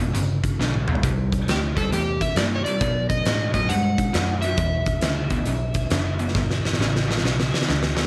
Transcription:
Already playing: F#1
0.00 E2 B2
0.14 G1 E2 C#3, closed hi-hat
0.44 kick, closed hi-hat
0.59 B1 E2 D3, snare
0.74 high tom
0.88 E2 B2, mid tom
0.95 floor tom
1.03 C2 C3 G3, kick, closed hi-hat
1.32 kick, closed hi-hat
1.48 D2 C3 A3 G4, snare, closed hi-hat
1.76 C3 G3 A4, kick, closed hi-hat
1.92 E2 C3 A3 G4, closed hi-hat
2.21 E5, kick, closed hi-hat
2.36 G2 C3 A#3 D5, snare, closed hi-hat
2.55 C#5
2.65 C3 G3 D5, muted picked electric bass stroke, closed hi-hat
2.81 B2 F#3, kick, closed hi-hat
3.10 D#5, kick, closed hi-hat
3.25 A2 B2 G#3, snare, closed hi-hat
3.54 B2 F#3 D#5, kick, closed hi-hat
3.69 G2 B2 G#3 F#5, closed hi-hat
3.98 muted picked electric bass stroke, kick, closed hi-hat
4.13 F#2 B2 A3, snare, closed hi-hat
4.42 B2 F#3 E5, closed hi-hat
4.57 E2 B2, kick, closed hi-hat
4.86 kick, closed hi-hat
5.01 D2 E2 C#3, snare, closed hi-hat
5.30 E2 B2, kick, closed hi-hat
5.45 B1 E2 C#3, closed hi-hat
5.74 kick, closed hi-hat
5.90 F#1 E2 D3, snare, closed hi-hat
6.19 E2 B2, closed hi-hat
6.28 snare
6.35 G1 E2 B2, kick, snare
6.51 snare
6.65 snare
6.73 snare
6.79 A1 E2 C#3, snare
6.96 snare
7.08 E2 B2, snare
7.18 snare
7.22 B1 E2 C#3, snare
7.40 snare
7.54 snare
7.62 snare
7.67 D2 E2 D3, snare
7.83 snare
7.95 E2 B2, snare

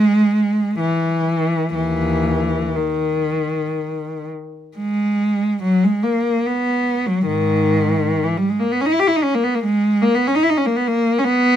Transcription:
Already playing: G#3
0.79 E3
1.75 D#2 E3
2.76 D#3
4.77 G#3
5.63 F#3
5.84 G#3
6.04 A#3
6.47 B3
7.06 F#3
7.27 G#2 D#3
8.24 E3
8.38 G3
8.50 G#3
8.60 A#3
8.72 B3
8.81 C#4
8.86 D#4
8.94 E4
9.00 G4
9.08 E4
9.16 D#4
9.23 C#4
9.35 A#3
9.44 B3
9.55 A#3
9.64 G#3
10.02 A#3
10.15 B3
10.27 C#4
10.35 D#4
10.43 E4
10.50 D#4
10.58 C#4
10.66 A#3
10.77 B3
10.88 A#3
11.19 C#4
11.25 B3

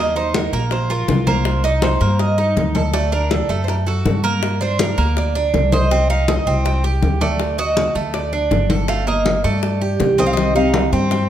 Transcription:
Already playing: D#2 A#3
0.00 D#5
0.16 D#4 C5, high bongo, high conga
0.34 A#4, high bongo, high conga
0.53 A#1 A#3 A#4, high bongo, high conga
0.71 C5, high bongo, high conga
0.90 F4 A#4, high bongo, high conga
1.08 C2, high bongo, low bongo, high conga
1.27 A#3 C5, high conga
1.45 high bongo, high conga
1.64 D#4 D5, high bongo, high conga
1.82 C5, high bongo, high conga
2.01 G2 A#3, high bongo, high conga
2.19 D#5, high bongo, high conga
2.38 D#4, high bongo, high conga
2.56 D2, high bongo, low bongo, high conga
2.75 A4, high conga
2.93 A3 D5, high bongo, high conga
3.12 D4 A#4, high bongo, high conga
3.31 A4, high bongo, high conga
3.49 F#2 A3 A4, high bongo, high conga
3.64 C5
3.68 A#4, high bongo, high conga
3.87 F#4 A4, high bongo, high conga
4.05 G2, high bongo, low bongo, high conga
4.24 A#3 A#4
4.43 high bongo, high conga
4.61 D4 C5, high bongo, high conga
4.79 A#4, high bongo, high conga
4.98 D2 A#3, high bongo, high conga
5.17 D5, high bongo, high conga
5.35 D4, high bongo, high conga
5.54 C2, high bongo, low bongo, high conga
5.72 C5 D#5, high conga
5.91 C4, high bongo, high conga
6.10 D#4 F5, high bongo, high conga
6.28 D#5, high bongo, high conga
6.46 C2 C4, high bongo, high conga
6.65 G5, high bongo, high conga
6.84 G4, high bongo, high conga
7.02 D2, high bongo, low bongo, high conga
7.21 A3 D5, high conga
7.40 high bongo, high conga
7.58 F#4 D#5, high bongo, high conga
7.77 high bongo, high conga
7.95 D2 A3, high bongo, high conga
8.14 D5, high bongo, high conga
8.32 D4, high bongo, high conga
8.51 G1, high bongo, low bongo, high conga
8.70 A4, high conga
8.88 A3 F5, high bongo, high conga
9.07 A#3 D#5, high bongo, high conga
9.26 high bongo, high conga
9.44 G2 A3 D5, high bongo, high conga
9.63 high bongo, high conga
9.81 G4, high bongo, high conga
10.00 C2, high bongo, low bongo, high conga
10.18 C4 D#5, high conga
10.26 F5
10.33 C3 D#3 D#5, high conga
10.37 G3 C4 G4, high bongo
10.55 D#3 G3 C4 D#4 G4 F5, high bongo, high conga
10.73 D#3 G3 G4, high bongo, high conga
10.92 G2 C4, high bongo, high conga
11.11 G5, muted nylon-string guitar stroke, high bongo, high conga

